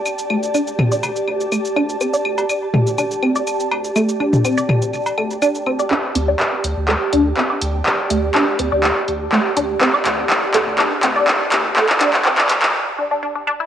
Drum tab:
HH |----------------|----------------|----------------|--x---x---x---x-|
SH |xx-xxx-xxx-xxx-x|xx-xx--xxx-xxx-x|xx-xxx-xxx-xxx-x|----------------|
CB |--------x-------|---x----------x-|---------x------|----------------|
CL |x-x-x-x-x-x-x-x-|x-x-x-x-x-x-x-x-|x-x-x-x-x-x-x-x-|----------------|
CP |----------------|----------------|----------------|x---x---x---x---|
T2 |------o---------|------o---------|---o--o---------|----------------|

HH |--x---x---x---x-|--x---x---x---x-|--x---x---------|
SH |----------------|----------------|----------------|
CB |----------------|----------------|----------------|
CL |----------------|----------------|----------------|
CP |x---x---x---x---|x-x-x-x-x-x-x-x-|xxxxxxxx--------|
T2 |----------------|----------------|----------------|